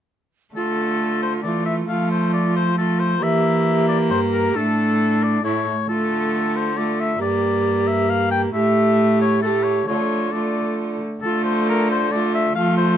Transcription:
0.55 D3 A3 F4 A4
1.23 C5
1.43 E3 A3 F4 D5
1.66 E5
1.88 F3 A3 F4 F5
2.11 C5
2.33 D5
2.56 C5
2.77 A3 F4 A4
3.00 C5
3.21 E3 A#3 G4 E5
3.88 D5
4.10 G2 C5
4.33 A#4
4.54 A2 A3 D4 A4
5.23 D5
5.43 A2 A3 E4 C#5
5.88 D3 A3 F4 A4
6.57 C5
6.77 A3 F4 D5
7.00 E5
7.20 G2 A#3 G4 D5
7.87 E5
8.10 F5
8.31 G5
8.53 A2 A3 G4 E5
9.21 C#5
9.42 A3 A4
9.47 G4
9.63 C#5
9.87 D3 A3 F4 C#5
10.32 A3 F4 D5
11.22 D3 A3 F4 A4
11.44 C5
11.69 A#4
11.91 C5
12.12 A3 F4 D5
12.35 E5
12.56 F3 A3 F4 F5
12.77 C5

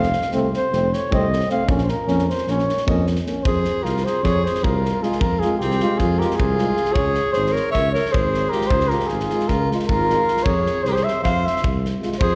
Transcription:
Already playing: F1 F5
0.03 snare
0.13 snare
0.22 snare
0.32 C2 A3 C4, snare
0.54 C5, snare
0.71 F1 A3 C4, snare
0.93 C#5, snare
1.11 C2 A3 C4 D#5, kick
1.33 snare
1.41 snare
1.49 A3 C4 F5, snare
1.67 A#1 A#3 C#4, kick
1.78 snare
1.83 C5
1.89 A#4, snare
2.07 F2 A#3 C#4, snare
2.19 snare
2.29 C5, snare
2.38 snare
2.47 A#1 A#3 C#4 C#5, snare
2.59 snare
2.69 snare
2.77 snare
2.87 F2 A#3 C#4 D#5, kick
3.07 snare
3.16 snare
3.26 A#3 C#4, snare
3.43 F2 G#4 C5, kick
3.65 snare
3.83 C2 F4 A#4, snare
3.97 snare
4.04 G#4 C5, snare
4.23 F2 G#4 C#5, kick, snare
4.45 G#4 C5, snare
4.55 snare
4.63 C2 F4 A#4, kick
4.85 snare
5.02 G#3 F4 G#4, snare
5.12 snare
5.20 F2 F4 A#4, kick
5.40 G#3 F4 G#4, snare
5.58 C2 C4 G4, snare
5.71 snare
5.80 G#3 F4, snare
5.97 F2 F4 G#4, kick, snare
6.19 G#3 F4 G4 A#4, snare
6.31 snare
6.35 F4 G#4
6.40 C2, kick
6.59 G#3 F4, snare
6.77 snare
6.85 snare
6.92 G#4 C#5, kick
6.97 C#2
7.14 snare
7.32 G#4 C5, snare
7.36 G#1
7.46 snare
7.52 A#4 C#5, snare
7.72 C#5 E5, kick, snare
7.76 C#2
7.93 A#4 C#5, snare
8.06 snare
8.12 G#1 G#4 C5, kick
8.34 snare
8.50 G#3 F4 G4 A#4, snare
8.61 snare
8.67 C5, kick
8.71 C#2 G#4
8.80 snare
8.89 G#3 F4 G4 A#4, snare
9.00 snare
9.07 G#1 F4 G#4, snare
9.20 snare
9.30 G#3 F4, snare
9.40 snare
9.48 C#2 F4 A#4, kick, snare
9.69 G#3 F4, snare
9.80 snare
9.88 G#1 F4 A#4, kick
10.08 G#3 F4, snare
10.28 snare
10.37 snare
10.43 F2 G#4 C#5, kick
10.66 snare
10.83 C2 G#4 C5, snare
10.89 G4 A#4
10.93 G#4 C5, snare
11.04 C5 E5
11.08 snare
11.23 F2 C5 F5, kick, snare
11.45 C5 E5, snare
11.56 snare
11.63 C2, kick
11.85 snare
12.01 G#3 F4, snare
12.12 snare
12.20 F2 G#4 C5, kick

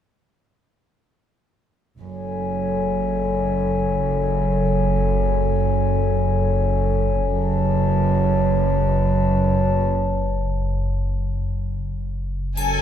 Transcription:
1.98 F#1 F#2 A4 C#5 G#5
7.26 F#1 F#2 B4 C#5 A5
12.57 F#1 F#2 A4 C#5 G#5, triangle

